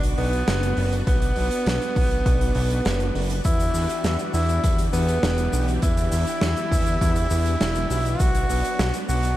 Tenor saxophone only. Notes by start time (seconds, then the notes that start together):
0.18 B3
1.07 B3
3.45 E4
4.34 E4
4.93 B3
5.83 E4
8.20 F#4
9.09 F#4